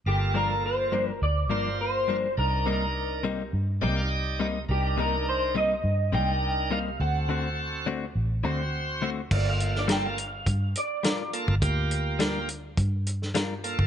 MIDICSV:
0, 0, Header, 1, 6, 480
1, 0, Start_track
1, 0, Key_signature, -2, "minor"
1, 0, Tempo, 578035
1, 50, Time_signature, 4, 2, 24, 8
1, 11517, End_track
2, 0, Start_track
2, 0, Title_t, "Clean electric guitar"
2, 0, Program_c, 0, 27
2, 62, Note_on_c, 0, 67, 68
2, 280, Note_off_c, 0, 67, 0
2, 305, Note_on_c, 0, 70, 78
2, 521, Note_off_c, 0, 70, 0
2, 547, Note_on_c, 0, 72, 73
2, 921, Note_off_c, 0, 72, 0
2, 921, Note_on_c, 0, 70, 73
2, 1017, Note_off_c, 0, 70, 0
2, 1020, Note_on_c, 0, 74, 85
2, 1500, Note_off_c, 0, 74, 0
2, 1503, Note_on_c, 0, 72, 79
2, 1979, Note_off_c, 0, 72, 0
2, 1982, Note_on_c, 0, 70, 71
2, 2904, Note_off_c, 0, 70, 0
2, 3911, Note_on_c, 0, 67, 75
2, 4147, Note_on_c, 0, 70, 76
2, 4148, Note_off_c, 0, 67, 0
2, 4387, Note_off_c, 0, 70, 0
2, 4390, Note_on_c, 0, 72, 77
2, 4626, Note_off_c, 0, 72, 0
2, 4629, Note_on_c, 0, 75, 87
2, 5100, Note_off_c, 0, 75, 0
2, 5103, Note_on_c, 0, 79, 89
2, 5578, Note_off_c, 0, 79, 0
2, 5582, Note_on_c, 0, 77, 78
2, 5818, Note_off_c, 0, 77, 0
2, 5821, Note_on_c, 0, 78, 75
2, 6264, Note_off_c, 0, 78, 0
2, 7759, Note_on_c, 0, 74, 87
2, 7866, Note_off_c, 0, 74, 0
2, 7880, Note_on_c, 0, 77, 77
2, 8100, Note_off_c, 0, 77, 0
2, 8122, Note_on_c, 0, 74, 77
2, 8221, Note_off_c, 0, 74, 0
2, 8234, Note_on_c, 0, 79, 75
2, 8355, Note_off_c, 0, 79, 0
2, 8355, Note_on_c, 0, 77, 82
2, 8922, Note_off_c, 0, 77, 0
2, 8948, Note_on_c, 0, 74, 81
2, 9404, Note_off_c, 0, 74, 0
2, 11517, End_track
3, 0, Start_track
3, 0, Title_t, "Tonewheel organ"
3, 0, Program_c, 1, 16
3, 54, Note_on_c, 1, 58, 59
3, 54, Note_on_c, 1, 65, 56
3, 58, Note_on_c, 1, 69, 65
3, 779, Note_off_c, 1, 58, 0
3, 779, Note_off_c, 1, 65, 0
3, 780, Note_off_c, 1, 69, 0
3, 1250, Note_on_c, 1, 58, 57
3, 1253, Note_on_c, 1, 65, 55
3, 1254, Note_on_c, 1, 72, 62
3, 1797, Note_off_c, 1, 58, 0
3, 1799, Note_off_c, 1, 65, 0
3, 1799, Note_off_c, 1, 72, 0
3, 1970, Note_on_c, 1, 62, 58
3, 1971, Note_on_c, 1, 70, 64
3, 1972, Note_on_c, 1, 63, 53
3, 2697, Note_off_c, 1, 62, 0
3, 2698, Note_off_c, 1, 63, 0
3, 2698, Note_off_c, 1, 70, 0
3, 3165, Note_on_c, 1, 74, 70
3, 3167, Note_on_c, 1, 63, 69
3, 3169, Note_on_c, 1, 67, 79
3, 3170, Note_on_c, 1, 79, 53
3, 3286, Note_off_c, 1, 79, 0
3, 3290, Note_on_c, 1, 77, 54
3, 3401, Note_off_c, 1, 77, 0
3, 3411, Note_on_c, 1, 75, 66
3, 3715, Note_off_c, 1, 74, 0
3, 3716, Note_off_c, 1, 63, 0
3, 3717, Note_off_c, 1, 67, 0
3, 3858, Note_off_c, 1, 75, 0
3, 3891, Note_on_c, 1, 62, 61
3, 3892, Note_on_c, 1, 63, 59
3, 3893, Note_on_c, 1, 70, 65
3, 4618, Note_off_c, 1, 62, 0
3, 4618, Note_off_c, 1, 63, 0
3, 4619, Note_off_c, 1, 70, 0
3, 5088, Note_on_c, 1, 62, 56
3, 5095, Note_on_c, 1, 63, 58
3, 5096, Note_on_c, 1, 70, 72
3, 5637, Note_off_c, 1, 62, 0
3, 5640, Note_off_c, 1, 63, 0
3, 5641, Note_off_c, 1, 70, 0
3, 5815, Note_on_c, 1, 60, 59
3, 5816, Note_on_c, 1, 66, 57
3, 5818, Note_on_c, 1, 69, 64
3, 6539, Note_off_c, 1, 60, 0
3, 6540, Note_off_c, 1, 66, 0
3, 6541, Note_off_c, 1, 69, 0
3, 7009, Note_on_c, 1, 60, 73
3, 7012, Note_on_c, 1, 66, 65
3, 7015, Note_on_c, 1, 72, 72
3, 7556, Note_off_c, 1, 60, 0
3, 7558, Note_off_c, 1, 66, 0
3, 7560, Note_off_c, 1, 72, 0
3, 7736, Note_on_c, 1, 58, 63
3, 7738, Note_on_c, 1, 69, 72
3, 7739, Note_on_c, 1, 65, 59
3, 8459, Note_off_c, 1, 58, 0
3, 8460, Note_off_c, 1, 69, 0
3, 8461, Note_off_c, 1, 65, 0
3, 9411, Note_on_c, 1, 58, 67
3, 9412, Note_on_c, 1, 65, 62
3, 9412, Note_on_c, 1, 69, 77
3, 9593, Note_off_c, 1, 58, 0
3, 9593, Note_off_c, 1, 69, 0
3, 9594, Note_off_c, 1, 65, 0
3, 9647, Note_on_c, 1, 58, 80
3, 9649, Note_on_c, 1, 67, 94
3, 9650, Note_on_c, 1, 65, 74
3, 10372, Note_off_c, 1, 58, 0
3, 10373, Note_off_c, 1, 67, 0
3, 10374, Note_off_c, 1, 65, 0
3, 11325, Note_on_c, 1, 58, 88
3, 11326, Note_on_c, 1, 69, 96
3, 11327, Note_on_c, 1, 65, 79
3, 11508, Note_off_c, 1, 58, 0
3, 11508, Note_off_c, 1, 69, 0
3, 11509, Note_off_c, 1, 65, 0
3, 11517, End_track
4, 0, Start_track
4, 0, Title_t, "Clean electric guitar"
4, 0, Program_c, 2, 27
4, 284, Note_on_c, 2, 43, 58
4, 292, Note_on_c, 2, 53, 64
4, 296, Note_on_c, 2, 58, 63
4, 300, Note_on_c, 2, 62, 73
4, 434, Note_off_c, 2, 43, 0
4, 438, Note_off_c, 2, 53, 0
4, 440, Note_off_c, 2, 58, 0
4, 442, Note_off_c, 2, 62, 0
4, 765, Note_on_c, 2, 43, 67
4, 770, Note_on_c, 2, 53, 65
4, 773, Note_on_c, 2, 58, 68
4, 778, Note_on_c, 2, 62, 62
4, 914, Note_off_c, 2, 43, 0
4, 917, Note_off_c, 2, 53, 0
4, 919, Note_off_c, 2, 58, 0
4, 921, Note_off_c, 2, 62, 0
4, 1243, Note_on_c, 2, 43, 60
4, 1247, Note_on_c, 2, 53, 69
4, 1253, Note_on_c, 2, 58, 67
4, 1258, Note_on_c, 2, 62, 77
4, 1394, Note_off_c, 2, 43, 0
4, 1396, Note_off_c, 2, 53, 0
4, 1399, Note_off_c, 2, 58, 0
4, 1401, Note_off_c, 2, 62, 0
4, 1727, Note_on_c, 2, 43, 66
4, 1734, Note_on_c, 2, 53, 60
4, 1738, Note_on_c, 2, 58, 67
4, 1743, Note_on_c, 2, 62, 67
4, 1876, Note_off_c, 2, 43, 0
4, 1879, Note_off_c, 2, 53, 0
4, 1881, Note_off_c, 2, 58, 0
4, 1884, Note_off_c, 2, 62, 0
4, 2208, Note_on_c, 2, 48, 65
4, 2213, Note_on_c, 2, 55, 67
4, 2220, Note_on_c, 2, 58, 61
4, 2223, Note_on_c, 2, 63, 65
4, 2357, Note_off_c, 2, 48, 0
4, 2359, Note_off_c, 2, 55, 0
4, 2362, Note_off_c, 2, 58, 0
4, 2364, Note_off_c, 2, 63, 0
4, 2686, Note_on_c, 2, 48, 70
4, 2691, Note_on_c, 2, 55, 79
4, 2696, Note_on_c, 2, 58, 73
4, 2699, Note_on_c, 2, 63, 79
4, 2836, Note_off_c, 2, 48, 0
4, 2838, Note_off_c, 2, 55, 0
4, 2841, Note_off_c, 2, 58, 0
4, 2842, Note_off_c, 2, 63, 0
4, 3169, Note_on_c, 2, 48, 69
4, 3176, Note_on_c, 2, 55, 74
4, 3179, Note_on_c, 2, 58, 76
4, 3184, Note_on_c, 2, 63, 88
4, 3317, Note_off_c, 2, 48, 0
4, 3321, Note_off_c, 2, 55, 0
4, 3322, Note_off_c, 2, 58, 0
4, 3325, Note_off_c, 2, 63, 0
4, 3649, Note_on_c, 2, 48, 70
4, 3655, Note_on_c, 2, 55, 74
4, 3660, Note_on_c, 2, 58, 71
4, 3666, Note_on_c, 2, 63, 79
4, 3798, Note_off_c, 2, 48, 0
4, 3800, Note_off_c, 2, 55, 0
4, 3803, Note_off_c, 2, 58, 0
4, 3806, Note_off_c, 2, 63, 0
4, 4128, Note_on_c, 2, 48, 65
4, 4135, Note_on_c, 2, 55, 62
4, 4139, Note_on_c, 2, 58, 63
4, 4144, Note_on_c, 2, 63, 74
4, 4277, Note_off_c, 2, 48, 0
4, 4281, Note_off_c, 2, 55, 0
4, 4282, Note_off_c, 2, 58, 0
4, 4285, Note_off_c, 2, 63, 0
4, 4606, Note_on_c, 2, 48, 58
4, 4613, Note_on_c, 2, 55, 65
4, 4617, Note_on_c, 2, 58, 61
4, 4621, Note_on_c, 2, 63, 75
4, 4756, Note_off_c, 2, 48, 0
4, 4759, Note_off_c, 2, 55, 0
4, 4762, Note_off_c, 2, 58, 0
4, 4764, Note_off_c, 2, 63, 0
4, 5086, Note_on_c, 2, 48, 68
4, 5092, Note_on_c, 2, 55, 65
4, 5098, Note_on_c, 2, 58, 67
4, 5102, Note_on_c, 2, 63, 73
4, 5236, Note_off_c, 2, 48, 0
4, 5239, Note_off_c, 2, 55, 0
4, 5242, Note_off_c, 2, 58, 0
4, 5244, Note_off_c, 2, 63, 0
4, 5569, Note_on_c, 2, 48, 61
4, 5574, Note_on_c, 2, 55, 65
4, 5578, Note_on_c, 2, 58, 66
4, 5584, Note_on_c, 2, 63, 64
4, 5717, Note_off_c, 2, 48, 0
4, 5720, Note_off_c, 2, 55, 0
4, 5722, Note_off_c, 2, 58, 0
4, 5725, Note_off_c, 2, 63, 0
4, 6052, Note_on_c, 2, 50, 60
4, 6056, Note_on_c, 2, 57, 59
4, 6063, Note_on_c, 2, 60, 74
4, 6066, Note_on_c, 2, 66, 69
4, 6199, Note_off_c, 2, 50, 0
4, 6201, Note_off_c, 2, 57, 0
4, 6204, Note_off_c, 2, 60, 0
4, 6206, Note_off_c, 2, 66, 0
4, 6530, Note_on_c, 2, 50, 77
4, 6535, Note_on_c, 2, 57, 71
4, 6539, Note_on_c, 2, 60, 84
4, 6543, Note_on_c, 2, 66, 78
4, 6678, Note_off_c, 2, 50, 0
4, 6681, Note_off_c, 2, 57, 0
4, 6682, Note_off_c, 2, 60, 0
4, 6684, Note_off_c, 2, 66, 0
4, 7005, Note_on_c, 2, 50, 74
4, 7013, Note_on_c, 2, 57, 69
4, 7016, Note_on_c, 2, 60, 85
4, 7022, Note_on_c, 2, 66, 78
4, 7155, Note_off_c, 2, 50, 0
4, 7159, Note_off_c, 2, 57, 0
4, 7161, Note_off_c, 2, 60, 0
4, 7164, Note_off_c, 2, 66, 0
4, 7488, Note_on_c, 2, 50, 72
4, 7494, Note_on_c, 2, 57, 76
4, 7501, Note_on_c, 2, 60, 74
4, 7504, Note_on_c, 2, 66, 83
4, 7637, Note_off_c, 2, 50, 0
4, 7640, Note_off_c, 2, 57, 0
4, 7643, Note_off_c, 2, 60, 0
4, 7644, Note_off_c, 2, 66, 0
4, 8203, Note_on_c, 2, 55, 80
4, 8208, Note_on_c, 2, 62, 73
4, 8215, Note_on_c, 2, 65, 80
4, 8220, Note_on_c, 2, 70, 84
4, 8354, Note_off_c, 2, 55, 0
4, 8356, Note_off_c, 2, 62, 0
4, 8360, Note_off_c, 2, 65, 0
4, 8362, Note_off_c, 2, 70, 0
4, 9162, Note_on_c, 2, 55, 64
4, 9171, Note_on_c, 2, 62, 74
4, 9175, Note_on_c, 2, 65, 70
4, 9178, Note_on_c, 2, 70, 84
4, 9312, Note_off_c, 2, 55, 0
4, 9317, Note_off_c, 2, 62, 0
4, 9319, Note_off_c, 2, 65, 0
4, 9320, Note_off_c, 2, 70, 0
4, 10125, Note_on_c, 2, 55, 94
4, 10132, Note_on_c, 2, 62, 100
4, 10137, Note_on_c, 2, 65, 89
4, 10142, Note_on_c, 2, 70, 88
4, 10273, Note_off_c, 2, 55, 0
4, 10276, Note_off_c, 2, 62, 0
4, 10279, Note_off_c, 2, 65, 0
4, 10282, Note_off_c, 2, 70, 0
4, 11082, Note_on_c, 2, 55, 88
4, 11088, Note_on_c, 2, 62, 91
4, 11093, Note_on_c, 2, 65, 86
4, 11098, Note_on_c, 2, 70, 93
4, 11230, Note_off_c, 2, 55, 0
4, 11233, Note_off_c, 2, 62, 0
4, 11236, Note_off_c, 2, 65, 0
4, 11238, Note_off_c, 2, 70, 0
4, 11517, End_track
5, 0, Start_track
5, 0, Title_t, "Fingered electric bass"
5, 0, Program_c, 3, 33
5, 50, Note_on_c, 3, 31, 82
5, 977, Note_off_c, 3, 31, 0
5, 1012, Note_on_c, 3, 38, 75
5, 1253, Note_off_c, 3, 38, 0
5, 1253, Note_on_c, 3, 31, 75
5, 1939, Note_off_c, 3, 31, 0
5, 1973, Note_on_c, 3, 36, 85
5, 2899, Note_off_c, 3, 36, 0
5, 2933, Note_on_c, 3, 43, 80
5, 3176, Note_on_c, 3, 36, 89
5, 3188, Note_off_c, 3, 43, 0
5, 3861, Note_off_c, 3, 36, 0
5, 3894, Note_on_c, 3, 36, 88
5, 4820, Note_off_c, 3, 36, 0
5, 4848, Note_on_c, 3, 43, 80
5, 5088, Note_on_c, 3, 36, 84
5, 5100, Note_off_c, 3, 43, 0
5, 5777, Note_off_c, 3, 36, 0
5, 5811, Note_on_c, 3, 38, 83
5, 6738, Note_off_c, 3, 38, 0
5, 6771, Note_on_c, 3, 33, 73
5, 7011, Note_off_c, 3, 33, 0
5, 7011, Note_on_c, 3, 38, 80
5, 7698, Note_off_c, 3, 38, 0
5, 7731, Note_on_c, 3, 31, 90
5, 8657, Note_off_c, 3, 31, 0
5, 8688, Note_on_c, 3, 43, 76
5, 8911, Note_off_c, 3, 43, 0
5, 9533, Note_on_c, 3, 31, 87
5, 9641, Note_off_c, 3, 31, 0
5, 9648, Note_on_c, 3, 38, 102
5, 10573, Note_off_c, 3, 38, 0
5, 10608, Note_on_c, 3, 43, 87
5, 11416, Note_off_c, 3, 43, 0
5, 11450, Note_on_c, 3, 31, 84
5, 11517, Note_off_c, 3, 31, 0
5, 11517, End_track
6, 0, Start_track
6, 0, Title_t, "Drums"
6, 7732, Note_on_c, 9, 36, 109
6, 7733, Note_on_c, 9, 49, 92
6, 7815, Note_off_c, 9, 36, 0
6, 7816, Note_off_c, 9, 49, 0
6, 7974, Note_on_c, 9, 42, 59
6, 8057, Note_off_c, 9, 42, 0
6, 8101, Note_on_c, 9, 38, 31
6, 8184, Note_off_c, 9, 38, 0
6, 8211, Note_on_c, 9, 42, 80
6, 8217, Note_on_c, 9, 38, 106
6, 8294, Note_off_c, 9, 42, 0
6, 8300, Note_off_c, 9, 38, 0
6, 8453, Note_on_c, 9, 42, 59
6, 8536, Note_off_c, 9, 42, 0
6, 8690, Note_on_c, 9, 36, 87
6, 8691, Note_on_c, 9, 42, 77
6, 8773, Note_off_c, 9, 36, 0
6, 8774, Note_off_c, 9, 42, 0
6, 8931, Note_on_c, 9, 42, 67
6, 9014, Note_off_c, 9, 42, 0
6, 9170, Note_on_c, 9, 42, 77
6, 9176, Note_on_c, 9, 38, 102
6, 9253, Note_off_c, 9, 42, 0
6, 9259, Note_off_c, 9, 38, 0
6, 9411, Note_on_c, 9, 42, 59
6, 9494, Note_off_c, 9, 42, 0
6, 9534, Note_on_c, 9, 36, 67
6, 9617, Note_off_c, 9, 36, 0
6, 9650, Note_on_c, 9, 36, 112
6, 9652, Note_on_c, 9, 42, 86
6, 9733, Note_off_c, 9, 36, 0
6, 9735, Note_off_c, 9, 42, 0
6, 9890, Note_on_c, 9, 42, 64
6, 9973, Note_off_c, 9, 42, 0
6, 10128, Note_on_c, 9, 42, 77
6, 10134, Note_on_c, 9, 38, 110
6, 10211, Note_off_c, 9, 42, 0
6, 10217, Note_off_c, 9, 38, 0
6, 10368, Note_on_c, 9, 42, 60
6, 10451, Note_off_c, 9, 42, 0
6, 10608, Note_on_c, 9, 36, 89
6, 10609, Note_on_c, 9, 42, 71
6, 10691, Note_off_c, 9, 36, 0
6, 10692, Note_off_c, 9, 42, 0
6, 10850, Note_on_c, 9, 42, 61
6, 10933, Note_off_c, 9, 42, 0
6, 10980, Note_on_c, 9, 38, 32
6, 11063, Note_off_c, 9, 38, 0
6, 11085, Note_on_c, 9, 42, 73
6, 11090, Note_on_c, 9, 38, 98
6, 11168, Note_off_c, 9, 42, 0
6, 11173, Note_off_c, 9, 38, 0
6, 11327, Note_on_c, 9, 42, 53
6, 11410, Note_off_c, 9, 42, 0
6, 11450, Note_on_c, 9, 36, 77
6, 11517, Note_off_c, 9, 36, 0
6, 11517, End_track
0, 0, End_of_file